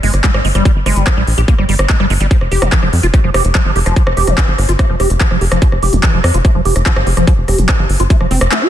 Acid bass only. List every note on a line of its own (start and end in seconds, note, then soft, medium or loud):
0.03 0.12 G#3 medium
0.24 0.30 G3 loud
0.34 0.40 G3 medium
0.45 0.48 G#3 medium
0.55 0.64 G3 medium
0.86 0.98 G#3 medium
0.96 1.06 G3 medium
1.07 1.16 F3 medium
1.17 1.23 G3 medium
1.38 1.41 G4 medium
1.48 1.54 A#3 medium
1.58 1.65 G3 medium
1.69 1.75 G3 medium
1.90 1.96 G#3 medium
2.00 2.06 G3 loud
2.10 2.14 G#3 medium
2.21 2.27 G3 medium
2.31 2.37 F3 medium
2.52 2.63 G4 medium
2.62 2.71 F3 medium
2.72 2.81 E3 medium
2.83 2.89 F3 medium
3.03 3.07 F4 medium
3.14 3.20 A3 medium
3.24 3.30 F3 medium
3.34 3.43 G4 medium
3.55 3.61 F3 loud
3.65 3.71 F3 medium
3.76 3.79 G4 medium
3.86 3.95 F3 medium
4.17 4.29 G4 medium
4.27 4.37 F3 medium
4.38 4.47 E3 medium
4.48 4.54 F3 medium
4.69 4.72 F4 medium
4.79 4.85 A3 medium
4.89 4.96 F3 medium
5.00 5.09 G4 medium
5.21 5.27 F3 loud
5.31 5.37 F3 medium
5.41 5.45 G4 medium
5.52 5.61 F3 medium
5.62 5.68 F3 medium
5.83 5.94 G4 medium
5.93 6.02 F3 medium
6.03 6.12 E3 medium
6.14 6.20 F3 medium
6.34 6.38 F4 medium
6.45 6.51 A3 medium
6.55 6.61 F3 medium
6.65 6.74 G4 medium
6.86 6.92 F3 loud
6.96 7.02 F3 medium
7.07 7.10 G4 medium
7.17 7.26 F3 medium
7.27 7.33 F3 medium
7.48 7.60 G4 medium
7.58 7.68 F3 medium
7.69 7.78 E3 medium
7.79 7.85 F3 medium
8.00 8.04 F4 medium
8.10 8.16 A3 medium
8.21 8.27 F3 medium
8.31 8.40 C4 loud
8.52 8.63 A3 medium
8.62 8.69 G4 medium